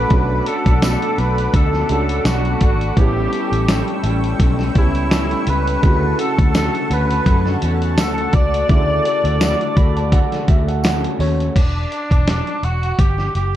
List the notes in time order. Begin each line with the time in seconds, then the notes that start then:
Already playing: A3 C#4 F#4 A4 B4 F#5 B5 D6
0.09 B1 B2 A3 C#4 D4 F#4, kick, closed hi-hat
0.13 F#4
0.46 A3 D4 F#4 A4, closed hi-hat
0.66 B1, kick, closed hi-hat
0.82 B2 A3 D4 F#4 A4, snare, closed hi-hat, tambourine
1.02 closed hi-hat
1.18 B1 A3 D4 F#4 B4, closed hi-hat
1.38 closed hi-hat
1.53 D2 B2 A3 D4 F#4 A4, kick, closed hi-hat
1.73 snare
1.89 C#2 A3 C#4 D4 F#4 A4, closed hi-hat
2.09 closed hi-hat
2.25 B1 B2 A3 D4 F#4, snare, closed hi-hat, tambourine
2.45 closed hi-hat
2.61 G#1 A3 D4 F#4, kick, closed hi-hat
2.81 closed hi-hat
2.96 A1 A2 G3 B3 C#4 E4 G4 G5 C#6 E6, kick, closed hi-hat
3.01 G4
3.33 G3 C#4 E4, closed hi-hat
3.52 A1, closed hi-hat
3.67 A2 G3 C#4 E4, snare, closed hi-hat, tambourine
3.88 closed hi-hat
4.03 A1 G3 C#4 E4, closed hi-hat
4.24 closed hi-hat
4.38 B1 A2 G3 C#4 E4, kick, closed hi-hat
4.59 snare
4.75 C#2 G3 B3 C#4 E4 G4, kick, closed hi-hat
4.95 closed hi-hat
5.11 A2 G3 C#4 E4, snare, closed hi-hat, tambourine
5.31 closed hi-hat
5.47 C#2 G3 C#4 E4 B4, closed hi-hat
5.67 closed hi-hat
5.81 D2 C#3 D3 A3 C#4 E4 F#4 F#5 A5, kick, closed hi-hat
5.86 F#4
6.19 A3 C#4 F#4 A4, closed hi-hat
6.39 D2, kick, closed hi-hat
6.54 D3 A3 C#4 F#4 A4, snare, closed hi-hat, tambourine
6.75 closed hi-hat
6.90 D2 A3 C#4 F#4 B4, closed hi-hat
7.11 closed hi-hat
7.24 F#2 D3 A3 C#4 F#4, kick, closed hi-hat
7.46 snare
7.61 E2 A3 C#4 F#4, closed hi-hat
7.82 closed hi-hat
7.97 D2 D3 A3 C#4 F#4 A4, snare, closed hi-hat, tambourine
8.18 closed hi-hat
8.33 C#2 A3 F#4 D5, kick, closed hi-hat
8.54 closed hi-hat
8.67 D2 C#3 D3 A3 E4 F#4, kick, closed hi-hat
8.73 A4
9.04 A3 F#4, closed hi-hat
9.24 D2, closed hi-hat
9.39 D3 A3 F#4, snare, closed hi-hat, tambourine
9.61 closed hi-hat
9.75 D2 A3 F#4 B5, kick, closed hi-hat
9.97 A5, closed hi-hat
10.11 D3 A3 F#4 F#5, kick, closed hi-hat
10.32 snare, closed hi-hat
10.47 D2 A3 F#4 E5, kick, closed hi-hat
10.68 F#5, closed hi-hat
10.83 D3 A3 C#4 F#4 F#5, snare, closed hi-hat, tambourine
11.04 closed hi-hat
11.19 D#2 A3 C#4 F#4 C#5, open hi-hat
11.40 closed hi-hat
11.56 E1 D4, kick, closed hi-hat, crash
11.92 closed hi-hat
12.11 E1, kick, closed hi-hat
12.28 snare, closed hi-hat
12.47 closed hi-hat
12.63 E1 F#4, closed hi-hat
12.83 closed hi-hat
12.99 G1 G4, kick, closed hi-hat
13.18 snare
13.35 F#1 G4, closed hi-hat